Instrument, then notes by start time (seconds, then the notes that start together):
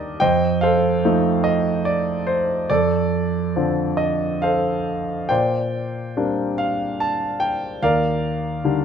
grand piano
Already playing: D#2 D#3 G3 D4 G4 A#4 D5 D#5
0.20 F2 C5 D#5 G5
0.61 A4 C5 F5
1.05 F3 A3 D#4
1.44 D#5
1.85 D5
2.27 C5
2.70 F2 A4 D5
3.56 D3 F3 C4
3.97 D#5
4.42 A4 C5 F5
5.29 A#2 C5 D5 G5
6.17 G3 A#3 C4 D4
6.58 F5
7.00 A5
7.40 G5
7.83 D#2 A#4 D5 F5
8.64 D3 D#3 G3